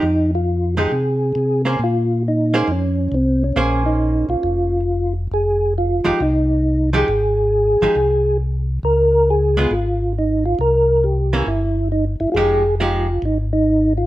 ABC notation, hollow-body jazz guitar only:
X:1
M:4/4
L:1/8
Q:"Swing" 1/4=136
K:Fm
V:1 name="Hollow-body jazz guitar"
z3 [F,A,EG] z3 [B,DAc] | z3 [B,DAc] z4 | [B,DAc]4- [B,DAc] z3 | z3 [F,A,EG] z3 [F,A,EG] |
z3 [F,A,EG] z4 | z3 [A,_CF] z4 | z3 [=E,B,D] z4 | [F,A,EG] z [F,A,EG] z4 z |]